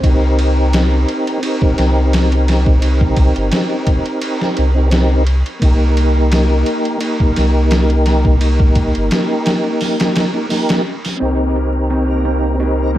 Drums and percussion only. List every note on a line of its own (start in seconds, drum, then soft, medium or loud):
0.03 kick medium
0.03 ride medium
0.39 ride medium
0.73 snare loud
0.73 ride medium
1.09 ride medium
1.27 ride soft
1.43 ride medium
1.62 kick medium
1.78 snare soft
1.78 ride medium
2.13 snare loud
2.13 ride medium
2.32 ride soft
2.48 snare medium
2.48 ride medium
2.66 kick medium
2.82 ride medium
3.01 kick medium
3.17 kick medium
3.17 ride medium
3.36 ride soft
3.52 snare loud
3.52 ride medium
3.87 kick medium
3.87 ride medium
4.06 ride soft
4.22 ride medium
4.42 snare soft
4.57 ride medium
4.91 snare medium
4.91 ride medium
5.27 ride medium
5.46 ride soft
5.62 kick medium
5.62 ride medium
5.97 ride medium
6.32 snare loud
6.32 ride medium
6.66 ride medium
6.85 ride soft
7.01 ride medium
7.20 kick medium
7.36 snare soft
7.36 ride medium
7.71 snare loud
7.71 ride medium
7.90 ride soft
8.06 snare soft
8.06 ride medium
8.25 kick medium
8.41 ride medium
8.60 kick medium
8.75 kick medium
8.75 ride medium
8.95 ride soft
9.11 snare loud
9.11 ride medium
9.46 snare loud
9.46 ride medium
9.81 snare soft
9.81 open hi-hat medium
10.00 snare loud
10.00 ride medium
10.16 snare loud
10.16 ride medium
10.50 snare soft
10.50 open hi-hat medium
10.69 snare loud
10.69 ride medium
11.05 snare soft
11.05 open hi-hat medium
11.21 ride medium
11.56 ride medium
11.90 ride medium
12.25 ride medium
12.44 ride soft
12.60 ride medium
12.95 ride medium